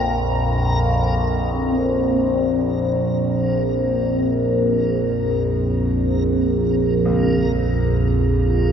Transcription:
Already playing: A#1 F2 G#3 A#3 F4 A#4
1.54 A#1 F2 A#4
7.05 C#2

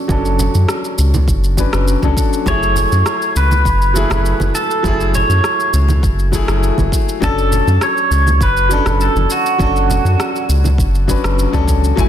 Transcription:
Already playing: F#3 C#4 D4 A4
0.08 F#1 F#3 C#4 D4 A4, kick, high conga, shaker
0.25 shaker
0.39 low conga, shaker
0.54 F#2, high conga, shaker
0.69 cross-stick, shaker
0.84 shaker
0.98 C#2, shaker
1.14 high conga, low conga, shaker
1.28 F#1, kick, shaker
1.44 shaker
1.57 F#3 C#4 D4 B4, kick, high conga, shaker
1.73 F#1, cross-stick, shaker
1.88 shaker
2.02 C#2 F#3 C#4 D4 A4, kick, high conga, shaker
2.17 kick, shaker
2.33 shaker
2.46 F#1 F#3 A3 E4 G#4 C#5, kick, high conga, shaker
2.63 shaker
2.76 low conga, shaker
2.92 F#2, high conga, shaker
3.06 cross-stick, shaker
3.22 shaker
3.36 C#2 B4, shaker
3.51 high conga, shaker
3.65 F#1, kick, shaker
3.82 shaker
3.94 F#3 A3 E4 G#4, high conga, shaker
4.10 F#1, cross-stick, low conga, shaker
4.26 shaker
4.40 F#1, high conga, shaker
4.55 A4, shaker
4.71 shaker
4.83 F#1 F#3 A3 E4 G#4, kick, high conga, shaker
5.00 shaker
5.15 C#5, low conga, shaker
5.29 F#2, high conga, shaker
5.44 cross-stick, shaker
5.60 shaker
5.73 C#2, shaker
5.88 high conga, low conga, shaker
6.03 F#1, kick, shaker
6.19 shaker
6.32 F#3 A3 E4 G#4, kick, high conga, shaker
6.48 F#1, cross-stick, shaker
6.63 shaker
6.78 F#1, kick, high conga, shaker
6.92 kick, shaker
7.09 shaker
7.20 F#1 F#3 C#4 D4 A4, kick, high conga, shaker
7.38 shaker
7.52 low conga, shaker
7.67 F#2, high conga, shaker
7.81 C#5, cross-stick, shaker
7.97 shaker
8.11 C#2, shaker
8.27 high conga, shaker
8.40 F#1 B4, kick, shaker
8.57 shaker
8.69 F#3 C#4 D4 A4, high conga, shaker
8.86 F#1, cross-stick, low conga, shaker
9.01 A4, shaker
9.15 F#1, high conga, shaker
9.30 F#4, shaker
9.46 shaker
9.58 F#1 F#3 C#4 D4 A4, kick, high conga, shaker
9.76 shaker
9.90 low conga, shaker
10.05 F#2, high conga, shaker
10.20 cross-stick, shaker
10.36 shaker
10.49 C#2, shaker
10.64 high conga, low conga, shaker
10.78 F#1, kick, shaker
10.95 shaker
11.08 F#3 C#4 D4 B4, kick, high conga, shaker
11.24 F#1, cross-stick, shaker
11.39 shaker
11.52 C#2 F#3 C#4 D4 A4, kick, high conga, shaker
11.68 kick, shaker
11.84 shaker
11.96 F#1 E3 F#3 A3 E4 F#4 G#5, kick, shaker

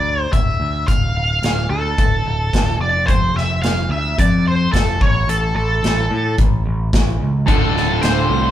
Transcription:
Already playing: D2 D5
0.22 C5
0.33 D1 E5, kick, closed hi-hat
0.60 D2
0.88 D1 F5, kick, closed hi-hat
1.15 D1
1.43 D1, snare, closed hi-hat
1.69 D2 A4
1.98 D1, kick, closed hi-hat
2.26 D1
2.53 kick, snare, closed hi-hat
2.79 F1 D5
3.07 F1 C5, kick, closed hi-hat
3.35 F1 E5, snare
3.62 F1 F5, snare, closed hi-hat
3.89 D2 E5
4.18 F2 D5, kick, closed hi-hat
4.47 C5
4.73 F1 A4, kick, snare, closed hi-hat
5.01 A1 C#5, kick
5.28 A1 A4, closed hi-hat
5.55 A1 A4
5.83 A1, snare, closed hi-hat
6.11 A2
6.38 A1, kick, closed hi-hat
6.66 A1
6.93 A1, kick, snare, closed hi-hat
7.20 C#2
7.46 D1 D2 A2 D3 A3 D4 F4 A4, kick, closed hi-hat
7.61 D3 A3 F4
7.74 D1 D4 F4 A4, snare
7.88 D3 A3 F4
8.01 D1 D2 A2 D3 A3 D4 F4 C5, snare, closed hi-hat
8.05 A4
8.28 C2 A2 D3 A3 D4 F4 A4
8.42 D3 A3 F4

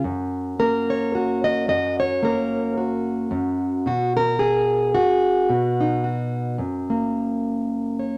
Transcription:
0.04 F#2
0.59 A#3 A#4
0.90 C#5
1.15 F#4
1.44 D#5
1.68 F#2 D#5
2.00 C#5
2.23 A#3 A#4
2.77 F#4
3.31 F#2
3.86 B2 F#4
4.17 A#4
4.39 G#4
4.95 F#2 F#4
5.49 B2
5.81 D#4
6.04 F#4
6.58 F#2
6.90 A#3
7.99 C#5

